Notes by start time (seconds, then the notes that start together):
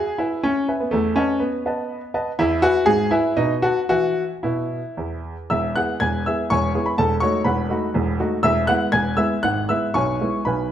Already playing: G#4
0.18 E4 B4 E5 G#5
0.44 C#4
0.68 B4 E5 G#5
0.80 B3
0.91 E2 A3
1.16 C#4 B4 D#5 A5
1.40 B3
1.66 B4 D#5 A5
2.14 B4 D#5 A5
2.39 E2 E4
2.62 F#4 B4 E5 G#5
2.86 G#2 G#4
3.11 E4 B4 E5 G#5
3.37 B2 D#4
3.62 F#4 B4 F#5 A5
3.89 E3 F#4 E5 G#5
4.43 B2 E4
4.97 E2
5.50 E1 E2 E5 E6
5.76 B3 E4 G#4 F#5 F#6
6.00 E1 E2 G#5 G#6
6.26 B3 E4 G#4 E5 E6
6.50 E1 E2 C#5 G#5 C#6
6.74 B3 E4 G#4
6.86 B5
6.98 E1 E2 A4 A5
7.20 A3 D#4 F#4 C#5 C#6
7.44 E1 E2 B4 F#5 B5
7.69 A3 D#4 F#4
7.94 E1 E2
8.20 A3 D#4 F#4
8.43 E1 E2 E5 E6
8.67 G#3 B3 E4 F#5 F#6
8.92 E1 E2 G#5 G#6
9.17 G#3 B3 E4 E5 E6
9.43 G#1 G#2 F#5 F#6
9.69 G#3 B3 E4 E5 E6
9.94 B1 B2 C#5 G#5 C#6
10.21 G#3 B3 E4
10.45 B1 B2 B4 G#5 B5